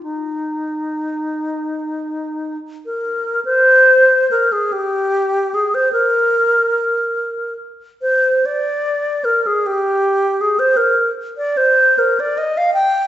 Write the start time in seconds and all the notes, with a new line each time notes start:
0.03 D#4
2.86 A#4
3.45 C5
4.31 A#4
4.52 G#4
4.72 G4
5.54 G#4
5.74 C5
5.92 A#4
8.02 C5
8.46 D5
9.24 A#4
9.46 G#4
9.66 G4
10.41 G#4
10.59 C5
10.77 A#4
11.37 D5
11.57 C5
11.98 A#4
12.20 D5
12.38 D#5
12.57 F5
12.74 G5